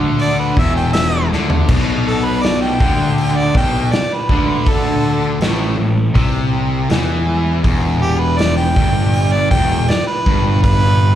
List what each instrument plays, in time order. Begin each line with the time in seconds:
Already playing: picked electric bass D2, distorted electric guitar D3
0.19 harmonica D5, open hi-hat
0.39 harmonica B4
0.57 picked electric bass E1, distorted electric guitar E2, harmonica E5, kick
0.76 harmonica G5
0.93 harmonica E5, snare, open hi-hat
1.32 picked electric bass D2, distorted electric guitar D3, snare
1.50 floor tom
1.69 picked electric bass B1, distorted electric guitar B2, kick, open hi-hat, crash
2.07 harmonica A4
2.24 harmonica B4
2.43 harmonica D5, snare, open hi-hat
2.62 harmonica G5
2.80 picked electric bass D2, distorted electric guitar D3, kick
3.18 open hi-hat
3.37 harmonica D5
3.55 picked electric bass B1, distorted electric guitar B2, harmonica G5, kick
3.92 harmonica D5, muted distorted electric guitar stroke, muted picked electric bass stroke, snare, open hi-hat
4.14 harmonica B4
4.29 picked electric bass D2, distorted electric guitar D3, kick
4.67 harmonica A4, kick, open hi-hat
5.40 picked electric bass A1, distorted electric guitar A2, snare, open hi-hat
5.78 picked electric bass A1, distorted electric guitar A2
6.14 picked electric bass C2, distorted electric guitar C3, kick, open hi-hat
6.89 picked electric bass E2, distorted electric guitar E3, snare, open hi-hat
7.64 picked electric bass E1, distorted electric guitar E2, kick, open hi-hat
8.02 harmonica G4
8.20 harmonica B4
8.38 harmonica D5, snare, open hi-hat
8.57 harmonica G5
8.76 picked electric bass G1, distorted electric guitar G2, kick
9.13 open hi-hat
9.33 harmonica D5
9.51 picked electric bass E1, distorted electric guitar E2, harmonica G5, kick
9.88 harmonica D5, muted distorted electric guitar stroke, muted picked electric bass stroke, snare, open hi-hat
10.07 harmonica B4
10.26 picked electric bass G1, distorted electric guitar G2, kick
10.63 harmonica B4, kick, open hi-hat